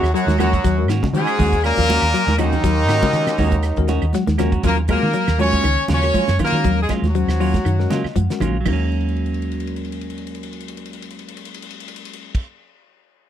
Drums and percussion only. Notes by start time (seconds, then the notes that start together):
0.03 snare, closed hi-hat, claves
0.16 closed hi-hat
0.28 snare, closed hi-hat, high conga
0.39 closed hi-hat, high conga, low conga, claves
0.53 kick, closed hi-hat, low conga
0.64 kick, snare, closed hi-hat
0.88 snare, closed hi-hat, claves
1.03 kick, snare, high conga
1.14 closed hi-hat
1.27 closed hi-hat, claves
1.39 kick, open hi-hat, high conga, low conga
1.53 kick, closed hi-hat
1.64 snare, closed hi-hat, claves
1.78 kick
1.89 closed hi-hat, high conga
2.02 snare, closed hi-hat, claves
2.14 closed hi-hat
2.28 snare, high conga
2.38 closed hi-hat, low conga, claves
2.52 closed hi-hat, low conga
2.64 kick, snare, closed hi-hat
2.89 snare, closed hi-hat, claves
3.02 kick, snare, closed hi-hat, high conga
3.13 closed hi-hat
3.27 snare, closed hi-hat, claves
3.38 kick, open hi-hat, high conga, low conga
3.51 kick, closed hi-hat
3.63 snare, closed hi-hat, claves
3.76 kick, closed hi-hat
3.88 snare, closed hi-hat, high conga
4.02 closed hi-hat, claves
4.13 snare, closed hi-hat, high conga
4.27 snare, closed hi-hat, high conga
4.38 snare, closed hi-hat, high conga, low conga, claves
4.52 kick, closed hi-hat, low conga
4.63 kick, snare, closed hi-hat, high conga, low conga
4.77 closed hi-hat
4.88 kick, closed hi-hat, high conga, claves
5.03 high conga
5.13 closed hi-hat, high conga
5.27 snare, closed hi-hat, claves
5.39 closed hi-hat, high conga
5.52 kick, closed hi-hat, high conga
5.64 closed hi-hat, high conga, claves
5.78 closed hi-hat
5.88 snare, closed hi-hat, high conga
6.03 snare, closed hi-hat, claves
6.14 kick, closed hi-hat, high conga
6.28 snare, closed hi-hat
6.39 kick, closed hi-hat, low conga, claves
6.64 kick, closed hi-hat, high conga, low conga
6.89 kick, snare, closed hi-hat, high conga, claves
7.04 snare, closed hi-hat, high conga
7.15 closed hi-hat, high conga
7.28 snare, claves
7.41 open hi-hat
7.54 kick, snare, closed hi-hat, high conga, low conga
7.65 closed hi-hat, high conga, claves
7.80 snare
7.91 snare, closed hi-hat, high conga
8.04 snare, claves
8.16 kick, closed hi-hat, high conga
8.30 snare, closed hi-hat
8.40 kick, closed hi-hat, low conga, claves
8.66 kick, crash, low conga, claves
8.92 crash
9.01 ride
9.09 crash
9.16 ride
9.26 crash
9.34 ride
9.42 crash
9.52 ride
9.60 crash
9.67 ride
9.76 crash
9.85 ride
9.92 crash
10.01 ride
10.10 crash
10.18 ride
10.27 crash
10.35 ride
10.43 crash
10.53 ride
10.60 crash
10.68 ride
10.77 crash
10.85 ride
10.93 crash
11.02 ride
11.10 crash
11.19 ride
11.28 crash
11.37 ride
11.45 crash
11.54 ride
11.62 crash
11.70 ride
11.80 crash
11.88 ride
11.96 crash
12.05 ride
12.13 crash
12.35 kick, crash